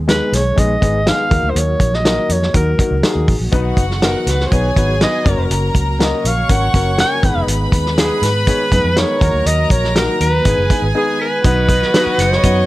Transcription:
Already playing: fingered electric bass D#2, tonewheel organ D#3 G#3 B3 G#4
0.08 upright piano G#3 B3 D#4 G#4, alto saxophone B4, snare, closed hi-hat
0.32 fingered electric bass B1, alto saxophone C#5, snare, closed hi-hat
0.56 fingered electric bass A#1, upright piano G#3 B3 D#4 G#4, alto saxophone D#5, kick, closed hi-hat
0.81 fingered electric bass G#1, upright piano G#3 B3 D#4 G#4, kick, closed hi-hat
1.06 upright piano G#3 B3 D#4 G#4, alto saxophone F5, snare, closed hi-hat
1.30 fingered electric bass D#2, tonewheel organ F#3 A#3 F#4, upright piano A#3 D#4 F#4 A#4, kick, closed hi-hat
1.43 fingered electric bass D2
1.50 alto saxophone C5
1.56 fingered electric bass D#2, alto saxophone C#5, closed hi-hat
1.80 fingered electric bass A#1, kick, closed hi-hat
1.94 alto saxophone D#5, snare
2.04 upright piano A#3 D#4 F#4 A#4, snare, closed hi-hat
2.29 fingered electric bass F2, alto saxophone C#5, closed hi-hat
2.43 snare
2.53 fingered electric bass D#2, upright piano A#3 D#4 F#4 A#4, alto saxophone A#4, kick, closed hi-hat
2.78 upright piano A#3 D#4 F#4 A#4, kick, closed hi-hat
2.91 fingered electric bass C#2
3.03 upright piano A#3 D#4 F#4 A#4, alto saxophone G#4, snare, closed hi-hat
3.15 fingered electric bass D#2
3.28 fingered electric bass A1, kick, open hi-hat
3.40 fingered electric bass A#1
3.52 fingered electric bass B1, tonewheel organ D#3 B3 F#4, upright piano B3 D#4 F#4 B4, violin section F#4 F#5, kick, closed hi-hat
3.77 fingered electric bass F#1, kick, closed hi-hat
3.91 snare
4.02 upright piano B3 D#4 F#4 B4, alto saxophone A#4, snare, closed hi-hat
4.22 alto saxophone A#4
4.26 fingered electric bass C#2, alto saxophone B4, snare, closed hi-hat
4.40 snare
4.46 alto saxophone C5
4.51 fingered electric bass B1, upright piano B3 D#4 F#4 B4, violin section G#4 G#5, alto saxophone C#5, kick, closed hi-hat
4.76 fingered electric bass G#1, upright piano B3 D#4 F#4 B4, kick, closed hi-hat
5.00 upright piano B3 D#4 F#4 B4, alto saxophone D#5, snare, closed hi-hat
5.25 fingered electric bass F#1, tonewheel organ C#3 A#3, upright piano A#3 C#4 F#4 A#4, violin section A#4 A#5, kick, closed hi-hat
5.50 fingered electric bass F#1, closed hi-hat
5.75 fingered electric bass C#2, kick, closed hi-hat
5.99 upright piano A#3 C#4 F#4 A#4, alto saxophone D#5, snare, closed hi-hat
6.24 fingered electric bass A#1, violin section C#5 C#6, alto saxophone F5, closed hi-hat
6.49 fingered electric bass G#1, upright piano A#3 C#4 F#4 A#4, alto saxophone F#5, kick, closed hi-hat
6.74 fingered electric bass F#1, upright piano A#3 C#4 F#4 A#4, kick, closed hi-hat
6.98 upright piano A#3 C#4 F#4 A#4, alto saxophone G#5, snare, closed hi-hat
7.22 fingered electric bass G#1, tonewheel organ D#3 G#3 B3 G#4, upright piano B3 D#4 G#4 B4, violin section B4 B5, kick, closed hi-hat
7.35 fingered electric bass F1
7.47 fingered electric bass G#1, closed hi-hat
7.72 fingered electric bass D#2, kick, closed hi-hat
7.86 snare
7.97 upright piano B3 D#4 G#4 B4, alto saxophone G#4, snare, closed hi-hat
8.22 fingered electric bass G#2, alto saxophone B4, snare, closed hi-hat
8.47 upright piano B3 D#4 G#4 C#5, kick, closed hi-hat
8.71 fingered electric bass F#2, upright piano B3 D#4 G#4 B4, kick, closed hi-hat
8.84 fingered electric bass F2
8.96 upright piano B3 D#4 G#4 A#4, alto saxophone C#5, snare, closed hi-hat
9.20 fingered electric bass D#2, tonewheel organ F#3 A#3 F#4, upright piano A#3 D#4 F#4 A#4, violin section A#4 A#5, kick, closed hi-hat
9.34 fingered electric bass D2
9.46 fingered electric bass D#2, alto saxophone D#5, closed hi-hat
9.70 fingered electric bass A#1, alto saxophone C#5, kick, closed hi-hat
9.84 snare
9.95 upright piano A#3 D#4 F#4 A#4, alto saxophone A#4, snare, closed hi-hat
10.21 fingered electric bass D#2, alto saxophone B4, closed hi-hat
10.44 fingered electric bass G#1, tonewheel organ G#3 B3 G#4, upright piano B3 D#4 G#4 B4, violin section G#4 G#5, kick, closed hi-hat
10.58 fingered electric bass F#1
10.70 upright piano B3 D#4 G#4 B4, kick, closed hi-hat
10.82 fingered electric bass G#1
10.94 upright piano B3 D#4 G#4 B4, alto saxophone G#4, glockenspiel G#6
11.20 alto saxophone B4, glockenspiel B6
11.44 fingered electric bass B1, tonewheel organ D#3 F#3 B3 F#4, upright piano B3 D#4 F#4 B4, violin section B3 F#4 D#5, kick, closed hi-hat
11.69 kick, closed hi-hat
11.82 snare
11.94 upright piano B3 D#4 F#4 B4, snare, closed hi-hat
12.06 muted fingered electric bass stroke
12.18 fingered electric bass F#1, alto saxophone C#5, glockenspiel C#7, snare, closed hi-hat
12.32 snare
12.43 fingered electric bass F#2, upright piano B3 D#4 F#4 B4, kick, closed hi-hat

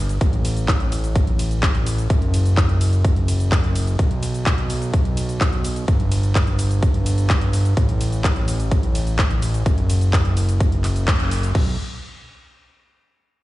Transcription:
Already playing: analog synth bass G1
0.09 closed hi-hat, shaker
0.21 analog synth bass A1, kick, closed hi-hat, shaker
0.33 closed hi-hat
0.45 open hi-hat, ride, shaker
0.57 closed hi-hat, shaker
0.68 kick, clap, closed hi-hat, shaker
0.80 closed hi-hat
0.92 open hi-hat, ride, shaker
1.04 closed hi-hat, shaker
1.16 kick, closed hi-hat, shaker
1.27 closed hi-hat
1.39 open hi-hat, ride, shaker
1.51 closed hi-hat, shaker
1.63 kick, clap, closed hi-hat, shaker
1.75 closed hi-hat
1.86 open hi-hat, ride, shaker
1.98 closed hi-hat, shaker
2.10 analog synth bass F#1, kick, closed hi-hat, shaker
2.22 closed hi-hat
2.34 open hi-hat, ride, shaker
2.46 closed hi-hat, shaker
2.57 kick, clap, closed hi-hat, shaker
2.69 closed hi-hat
2.81 open hi-hat, ride, shaker
2.93 closed hi-hat, shaker
3.05 kick, closed hi-hat, shaker
3.16 closed hi-hat
3.28 open hi-hat, ride, shaker
3.40 closed hi-hat, shaker
3.52 kick, clap, closed hi-hat, shaker
3.64 closed hi-hat
3.75 open hi-hat, ride, shaker
3.87 closed hi-hat, shaker
3.99 analog synth bass B1, kick, closed hi-hat, shaker
4.11 closed hi-hat
4.23 open hi-hat, ride, shaker
4.34 closed hi-hat, shaker
4.46 kick, clap, closed hi-hat, shaker
4.58 closed hi-hat
4.70 open hi-hat, ride, shaker
4.82 closed hi-hat, shaker
4.94 kick, closed hi-hat, shaker
5.05 closed hi-hat
5.17 open hi-hat, ride, shaker
5.29 closed hi-hat, shaker
5.41 kick, clap, closed hi-hat, shaker
5.53 closed hi-hat
5.64 open hi-hat, ride, shaker
5.76 closed hi-hat, shaker
5.88 analog synth bass G1, kick, closed hi-hat, shaker
6.00 closed hi-hat
6.12 open hi-hat, ride, shaker
6.23 closed hi-hat, shaker
6.35 kick, clap, closed hi-hat, shaker
6.47 closed hi-hat
6.59 open hi-hat, ride, shaker
6.71 closed hi-hat, shaker
6.83 kick, closed hi-hat, shaker
6.94 closed hi-hat
7.06 open hi-hat, ride, shaker
7.18 closed hi-hat, shaker
7.30 kick, clap, closed hi-hat, shaker
7.41 closed hi-hat
7.53 open hi-hat, ride, shaker
7.65 closed hi-hat, shaker
7.77 analog synth bass A1, kick, closed hi-hat, shaker
7.89 closed hi-hat
8.01 open hi-hat, ride, shaker
8.12 closed hi-hat, shaker
8.24 kick, clap, closed hi-hat, shaker
8.36 closed hi-hat
8.48 open hi-hat, ride, shaker
8.60 closed hi-hat, shaker
8.71 kick, closed hi-hat, shaker
8.83 closed hi-hat
8.95 open hi-hat, ride, shaker
9.07 closed hi-hat, shaker
9.19 kick, clap, closed hi-hat, shaker
9.31 closed hi-hat
9.42 open hi-hat, ride, shaker
9.54 closed hi-hat, shaker
9.66 analog synth bass F#1, kick, closed hi-hat, shaker
9.78 closed hi-hat
9.90 open hi-hat, ride, shaker
10.01 closed hi-hat, shaker
10.13 kick, clap, closed hi-hat, shaker
10.25 closed hi-hat
10.37 open hi-hat, ride, shaker
10.49 closed hi-hat, shaker
10.60 kick, closed hi-hat, shaker
10.72 closed hi-hat
10.84 clap, open hi-hat, ride, shaker
10.96 closed hi-hat, shaker
11.08 kick, clap, closed hi-hat, shaker
11.20 closed hi-hat
11.31 open hi-hat, ride, shaker
11.43 closed hi-hat, shaker
11.55 analog synth bass B1, kick, crash

